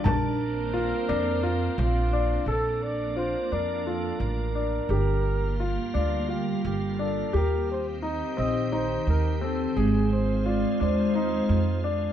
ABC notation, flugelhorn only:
X:1
M:7/8
L:1/8
Q:1/4=86
K:Bb
V:1 name="Flugelhorn"
B4- B F2 | A d c B A B2- | B3 F G G A | B c z e c B A |
_A c d c3 z |]